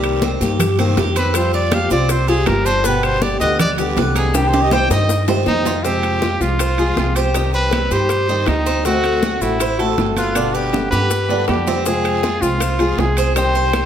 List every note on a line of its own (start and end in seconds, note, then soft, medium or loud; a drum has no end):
0.00 0.35 C2 medium
0.00 0.21 C3 medium
0.00 0.21 D#3 medium
0.00 0.21 G3 medium
0.00 0.21 A#3 medium
0.00 0.22 C4 medium
0.00 0.22 G4 medium
0.00 high conga soft
0.00 high timbale medium
0.00 claves medium
0.00 maracas soft
0.05 high bongo soft
0.22 0.40 D#3 soft
0.22 0.40 A#3 soft
0.22 0.40 C4 medium
0.22 0.40 C4 soft
0.22 0.39 G4 medium
0.22 high bongo medium
0.22 high conga medium
0.22 low timbale medium
0.22 short guiro medium
0.22 maracas soft
0.41 0.93 G2 medium
0.41 0.59 D#3 medium
0.41 0.59 A#3 medium
0.41 0.59 C4 medium
0.41 0.59 G4 medium
0.41 0.77 G4 medium
0.41 high bongo soft
0.41 high conga soft
0.41 short guiro medium
0.41 maracas medium
0.59 muted steel-string acoustic guitar stroke medium
0.59 high bongo medium
0.59 high conga soft
0.59 low conga medium
0.59 high timbale medium
0.59 long guiro medium
0.59 claves medium
0.59 maracas medium
0.78 0.96 D#3 medium
0.78 0.97 A#3 medium
0.78 0.97 C4 medium
0.78 0.96 G4 medium
0.78 high conga soft
0.78 high timbale medium
0.78 maracas soft
0.97 1.85 F2 medium
0.97 1.34 D#3 soft
0.97 1.34 A#3 soft
0.97 1.35 C4 medium
0.97 1.16 G4 medium
0.97 1.35 G4 soft
0.97 high bongo medium
0.97 low bongo medium
0.97 high conga medium
0.97 low timbale medium
0.97 short guiro medium
0.97 maracas soft
1.16 1.52 C4 medium
1.16 1.37 B4 medium
1.16 high bongo soft
1.16 high timbale medium
1.16 short guiro medium
1.16 maracas medium
1.34 1.71 F3 medium
1.34 1.72 G3 medium
1.34 1.72 C4 medium
1.34 1.73 F4 medium
1.34 1.54 C5 medium
1.34 high bongo medium
1.34 high conga soft
1.34 high timbale medium
1.34 long guiro medium
1.34 claves medium
1.34 maracas medium
1.53 1.72 F4 medium
1.53 1.76 D5 medium
1.53 high bongo soft
1.53 high conga soft
1.53 maracas soft
1.71 1.90 F3 medium
1.71 1.91 G3 medium
1.71 1.91 C4 medium
1.71 1.90 F4 medium
1.71 1.91 G4 medium
1.71 1.92 F5 medium
1.71 high bongo medium
1.71 high conga medium
1.71 high timbale medium
1.71 low timbale medium
1.71 short guiro medium
1.71 claves medium
1.71 maracas soft
1.90 2.43 C2 medium
1.90 2.09 G3 medium
1.90 2.27 C4 medium
1.90 2.10 C4 medium
1.90 2.09 F4 medium
1.90 2.12 D5 medium
1.90 high bongo soft
1.90 short guiro medium
1.90 maracas medium
2.09 2.30 C5 medium
2.09 muted steel-string acoustic guitar stroke medium
2.09 high bongo medium
2.09 high conga soft
2.09 high timbale medium
2.09 long guiro medium
2.09 maracas medium
2.28 2.47 G3 medium
2.28 2.47 C4 medium
2.28 2.46 F4 medium
2.28 2.65 G4 medium
2.28 2.49 G#4 medium
2.28 high conga soft
2.28 maracas soft
2.46 3.35 G1 medium
2.46 2.84 F3 soft
2.46 2.85 G3 medium
2.46 2.85 C4 medium
2.46 2.85 F4 medium
2.46 2.67 A#4 medium
2.46 high bongo medium
2.46 low bongo medium
2.46 high conga medium
2.46 high timbale medium
2.46 low timbale medium
2.46 short guiro medium
2.46 claves medium
2.46 maracas soft
2.65 2.84 D4 medium
2.65 2.88 C5 loud
2.65 high bongo soft
2.65 high conga soft
2.65 short guiro medium
2.65 maracas medium
2.84 3.21 B2 medium
2.84 3.21 D3 medium
2.84 3.22 G3 medium
2.84 3.21 B3 medium
2.84 3.22 B3 medium
2.84 3.22 G4 medium
2.84 3.06 B4 medium
2.84 high bongo medium
2.84 high conga soft
2.84 long guiro medium
2.84 maracas medium
3.03 3.24 C5 medium
3.03 high bongo soft
3.03 high conga soft
3.03 high timbale medium
3.03 claves medium
3.03 maracas soft
3.22 3.40 D3 soft
3.22 3.41 G3 medium
3.22 3.41 B3 medium
3.22 3.40 G4 medium
3.22 3.39 G4 medium
3.22 3.40 D5 medium
3.22 high bongo medium
3.22 high conga loud
3.22 low timbale medium
3.22 short guiro medium
3.22 maracas soft
3.40 3.93 D2 medium
3.40 3.60 D3 medium
3.40 3.60 G3 medium
3.40 3.59 B3 medium
3.40 3.59 G4 medium
3.40 3.77 B4 medium
3.40 3.58 D#5 loud
3.40 high bongo soft
3.40 high conga soft
3.40 short guiro medium
3.40 maracas medium
3.59 3.71 D5 loud
3.59 muted steel-string acoustic guitar stroke medium
3.59 high bongo medium
3.59 high conga soft
3.59 low conga medium
3.59 high timbale loud
3.59 claves medium
3.59 maracas medium
3.78 3.96 D3 medium
3.78 3.97 G3 medium
3.78 3.97 B3 medium
3.78 3.97 G4 medium
3.78 high conga soft
3.78 high timbale medium
3.78 maracas soft
3.96 4.84 C2 medium
3.96 4.34 D3 soft
3.96 4.34 G3 soft
3.96 4.35 B3 medium
3.96 4.35 G4 medium
3.96 4.15 B4 medium
3.96 high bongo medium
3.96 low bongo medium
3.96 high conga medium
3.96 low timbale medium
3.96 short guiro medium
3.96 maracas soft
4.15 4.52 D#4 medium
4.15 4.37 G#4 medium
4.15 high bongo soft
4.15 high conga medium
4.15 high timbale medium
4.15 short guiro medium
4.15 maracas medium
4.34 4.71 C3 medium
4.34 4.71 D#3 medium
4.34 4.71 G3 medium
4.34 4.72 C4 medium
4.34 4.50 G4 medium
4.34 4.72 G4 medium
4.34 high bongo medium
4.34 high conga soft
4.34 high timbale medium
4.34 long guiro medium
4.34 claves medium
4.34 maracas medium
4.48 4.63 C5 medium
4.53 4.72 G4 medium
4.53 high bongo soft
4.53 high conga soft
4.53 high timbale medium
4.53 maracas soft
4.61 4.75 D#5 medium
4.71 4.90 D#3 medium
4.71 4.90 C4 medium
4.71 4.90 C5 medium
4.71 4.91 G5 loud
4.71 high bongo medium
4.71 high conga medium
4.71 low timbale medium
4.71 short guiro medium
4.71 claves medium
4.71 maracas soft
4.90 5.43 G2 loud
4.90 5.08 D#3 medium
4.90 5.09 G3 medium
4.90 5.09 C4 medium
4.90 5.27 D#4 medium
4.90 5.09 G4 medium
4.90 5.26 D#5 loud
4.90 high bongo loud
4.90 low timbale medium
4.90 short guiro medium
4.90 maracas medium
5.09 muted steel-string acoustic guitar stroke medium
5.09 high bongo loud
5.09 high conga soft
5.09 long guiro medium
5.09 maracas medium
5.28 5.45 D#3 medium
5.28 5.46 G3 medium
5.28 5.46 C4 medium
5.28 5.46 G4 medium
5.28 5.65 C5 medium
5.28 low bongo medium
5.28 high conga soft
5.28 low timbale medium
5.28 maracas soft
5.46 6.35 F2 medium
5.46 5.84 D#3 medium
5.46 5.84 G3 medium
5.46 5.84 C4 medium
5.46 5.86 D#4 loud
5.46 low bongo loud
5.46 high conga medium
5.46 short guiro medium
5.46 claves medium
5.46 maracas soft
5.65 5.84 F4 medium
5.65 low bongo loud
5.65 high conga soft
5.65 low timbale medium
5.65 short guiro medium
5.65 maracas medium
5.84 6.21 C3 medium
5.84 6.19 F3 medium
5.84 6.20 G#3 medium
5.84 6.21 C4 medium
5.84 6.22 F4 medium
5.84 6.43 G4 medium
5.84 high bongo medium
5.84 high conga soft
5.84 long guiro medium
5.84 maracas medium
6.03 high bongo soft
6.03 high conga soft
6.03 high timbale medium
6.03 claves medium
6.03 maracas soft
6.21 6.39 F3 soft
6.21 6.40 G#3 soft
6.21 6.40 C4 soft
6.21 6.59 F4 medium
6.21 6.39 F4 soft
6.21 high bongo medium
6.21 high conga medium
6.21 low timbale medium
6.21 short guiro medium
6.21 maracas soft
6.40 6.93 C2 medium
6.40 6.58 F3 medium
6.40 6.58 G#3 medium
6.40 6.58 C4 medium
6.40 6.59 F4 medium
6.40 7.17 F4 medium
6.40 high bongo soft
6.40 high conga soft
6.40 short guiro medium
6.40 maracas medium
6.59 6.78 C5 medium
6.59 muted steel-string acoustic guitar stroke medium
6.59 high bongo medium
6.59 high conga soft
6.59 high timbale medium
6.59 long guiro medium
6.59 claves medium
6.59 maracas medium
6.78 6.96 F3 medium
6.78 6.96 G#3 medium
6.78 6.97 C4 medium
6.78 6.96 F4 medium
6.78 7.15 G#4 medium
6.78 high conga soft
6.78 high timbale medium
6.78 maracas soft
6.96 7.85 C2 medium
6.96 7.34 F3 soft
6.96 7.34 G#3 soft
6.96 7.35 C4 soft
6.96 7.35 F4 medium
6.96 high bongo medium
6.96 low bongo medium
6.96 high conga medium
6.96 low timbale medium
6.96 short guiro medium
6.96 maracas soft
7.16 7.53 G4 medium
7.16 7.34 C5 medium
7.16 high bongo soft
7.16 high timbale medium
7.16 short guiro medium
7.16 maracas medium
7.34 7.72 C3 medium
7.34 7.71 D#3 medium
7.34 7.72 G3 medium
7.34 7.72 C4 medium
7.34 7.53 D#4 medium
7.34 7.73 G4 medium
7.34 high bongo medium
7.34 high conga soft
7.34 high timbale medium
7.34 claves medium
7.34 maracas medium
7.53 7.90 C4 medium
7.53 7.94 B4 loud
7.53 high bongo soft
7.53 high conga soft
7.53 maracas soft
7.71 7.90 D#3 soft
7.71 7.91 G3 soft
7.71 7.91 C4 soft
7.71 7.90 G4 soft
7.71 high bongo soft
7.71 high conga medium
7.71 high timbale medium
7.71 low timbale medium
7.71 short guiro medium
7.71 claves medium
7.71 maracas soft
7.91 8.43 G2 medium
7.91 8.09 D#3 soft
7.91 8.09 G3 medium
7.91 8.09 C4 medium
7.91 8.09 G4 medium
7.91 8.28 G4 medium
7.91 8.49 C5 loud
7.91 high bongo soft
7.91 short guiro medium
7.91 maracas medium
8.09 muted steel-string acoustic guitar stroke medium
8.09 high bongo medium
8.09 high conga soft
8.09 high timbale medium
8.09 long guiro medium
8.09 maracas medium
8.28 8.48 D#3 medium
8.28 8.47 G3 medium
8.28 8.47 C4 medium
8.28 8.66 D#4 medium
8.28 8.47 G4 medium
8.28 high conga soft
8.28 maracas soft
8.46 9.35 D2 medium
8.46 8.85 G3 soft
8.46 8.85 C4 soft
8.46 8.85 D#4 medium
8.46 8.85 G4 soft
8.46 high bongo medium
8.46 low bongo medium
8.46 high conga medium
8.46 high timbale medium
8.46 low timbale medium
8.46 short guiro medium
8.46 claves medium
8.46 maracas soft
8.66 8.84 C4 medium
8.66 high bongo soft
8.66 high conga soft
8.66 short guiro medium
8.66 maracas medium
8.84 9.21 D3 medium
8.84 9.22 A3 medium
8.84 9.22 C4 medium
8.84 9.43 F#4 medium
8.84 9.23 F#4 medium
8.84 high bongo medium
8.84 high conga soft
8.84 long guiro medium
8.84 maracas medium
9.04 high bongo soft
9.04 high conga soft
9.04 high timbale medium
9.04 claves medium
9.04 maracas soft
9.22 9.41 D3 soft
9.22 9.41 A3 soft
9.22 9.41 C4 soft
9.22 9.60 F#4 medium
9.22 high bongo medium
9.22 high conga medium
9.22 low timbale medium
9.22 short guiro medium
9.22 maracas soft
9.41 9.94 A1 medium
9.41 9.59 A3 medium
9.41 9.60 C4 medium
9.41 9.90 E4 medium
9.41 9.59 F#4 medium
9.41 high bongo soft
9.41 high conga soft
9.41 short guiro medium
9.41 maracas medium
9.59 9.79 C5 medium
9.59 muted steel-string acoustic guitar stroke medium
9.59 high bongo medium
9.59 high conga soft
9.59 high timbale medium
9.59 claves medium
9.59 maracas medium
9.78 9.97 A3 soft
9.78 9.97 C4 medium
9.78 9.97 F#4 medium
9.78 10.16 A4 medium
9.78 high conga soft
9.78 high timbale medium
9.78 maracas soft
9.97 10.86 G1 medium
9.97 10.34 D3 soft
9.97 10.35 A3 soft
9.97 10.35 C4 medium
9.97 10.35 F#4 soft
9.97 high bongo medium
9.97 low bongo medium
9.97 high conga medium
9.97 low timbale medium
9.97 short guiro medium
9.97 maracas soft
10.16 10.55 F4 medium
10.16 10.35 B4 medium
10.16 high bongo soft
10.16 high conga medium
10.16 high timbale medium
10.16 short guiro medium
10.16 maracas medium
10.35 10.72 B2 medium
10.35 10.71 D3 medium
10.35 10.72 G3 medium
10.35 10.73 B3 medium
10.35 10.54 D4 medium
10.35 10.73 G4 medium
10.35 high bongo medium
10.35 high conga soft
10.35 high timbale medium
10.35 long guiro medium
10.35 claves medium
10.35 maracas medium
10.54 10.90 G4 medium
10.54 10.91 B4 medium
10.54 high bongo soft
10.54 high conga soft
10.54 maracas soft
10.73 10.91 D3 soft
10.73 10.91 G3 soft
10.73 10.92 B3 soft
10.73 10.91 G4 medium
10.73 high bongo medium
10.73 high conga medium
10.73 high timbale medium
10.73 short guiro medium
10.73 claves medium
10.73 maracas soft
10.91 11.44 G2 medium
10.91 11.10 D3 soft
10.91 11.10 G3 medium
10.91 11.10 B3 medium
10.91 11.10 G4 medium
10.91 11.29 G4 medium
10.91 11.44 B4 loud
10.91 high bongo soft
10.91 high timbale medium
10.91 short guiro medium
10.91 maracas medium
11.11 muted steel-string acoustic guitar stroke medium
11.11 high bongo medium
11.11 high conga soft
11.11 long guiro medium
11.11 maracas medium
11.29 11.47 D3 medium
11.29 11.48 G3 medium
11.29 11.48 B3 medium
11.29 11.66 D4 medium
11.29 11.48 G4 medium
11.29 high conga soft
11.29 low timbale medium
11.29 maracas soft
11.48 12.36 F2 medium
11.48 11.85 D3 soft
11.48 11.85 G3 soft
11.48 11.86 B3 soft
11.48 11.88 G4 medium
11.48 11.86 G4 soft
11.48 high bongo medium
11.48 low bongo medium
11.48 high conga medium
11.48 low timbale medium
11.48 short guiro medium
11.48 claves medium
11.48 maracas soft
11.67 11.85 C4 medium
11.67 high bongo soft
11.67 high conga soft
11.67 low timbale medium
11.67 short guiro medium
11.67 maracas medium
11.85 12.22 C3 medium
11.85 12.21 F3 medium
11.85 12.22 G#3 medium
11.85 12.22 C4 medium
11.85 12.23 C4 medium
11.85 12.23 F4 medium
11.85 12.43 G#4 medium
11.85 high bongo medium
11.85 high conga soft
11.85 long guiro medium
11.85 maracas medium
12.04 high bongo soft
12.04 high conga soft
12.04 high timbale medium
12.04 claves medium
12.04 maracas soft
12.22 12.41 F3 soft
12.22 12.42 G#3 soft
12.22 12.40 C4 soft
12.22 12.60 F4 medium
12.22 12.40 F4 medium
12.22 high bongo medium
12.22 high conga medium
12.22 low timbale medium
12.22 short guiro medium
12.22 maracas soft
12.41 12.94 C2 medium
12.41 12.59 F3 medium
12.41 12.60 G#3 medium
12.41 12.60 C4 medium
12.41 12.60 F4 medium
12.41 13.02 F4 medium
12.41 high bongo soft
12.41 high conga soft
12.41 short guiro medium
12.41 maracas medium
12.60 12.80 C5 medium
12.60 muted steel-string acoustic guitar stroke medium
12.60 high bongo medium
12.60 high conga soft
12.60 high timbale medium
12.60 long guiro medium
12.60 claves medium
12.60 maracas medium
12.79 12.96 F3 soft
12.79 12.96 G#3 medium
12.79 12.97 C4 medium
12.79 12.97 F4 medium
12.79 13.16 G#4 medium
12.79 high conga soft
12.79 high timbale medium
12.79 maracas soft
12.97 13.86 C2 medium
12.97 13.35 F3 soft
12.97 13.35 G#3 soft
12.97 13.35 C4 soft
12.97 13.36 F4 soft
12.97 13.36 G#4 medium
12.97 high bongo medium
12.97 low bongo medium
12.97 high conga medium
12.97 low timbale medium
12.97 short guiro medium
12.97 maracas soft
13.17 13.36 C5 medium
13.17 high bongo soft
13.17 high timbale medium
13.17 short guiro medium
13.17 maracas medium
13.35 13.72 C3 medium
13.35 13.72 D#3 medium
13.35 13.73 G3 medium
13.35 13.73 C4 medium
13.35 13.54 D#4 medium
13.35 13.73 G4 medium
13.35 13.86 C5 medium
13.35 high bongo medium
13.35 high conga soft
13.35 high timbale medium
13.35 long guiro medium
13.35 claves medium
13.35 maracas medium
13.55 13.86 C5 medium
13.55 high bongo soft
13.55 high conga soft
13.55 maracas soft
13.73 13.86 G4 medium
13.73 high bongo medium
13.73 high conga medium
13.73 high timbale medium
13.73 low timbale medium
13.73 short guiro medium
13.73 claves medium
13.73 maracas soft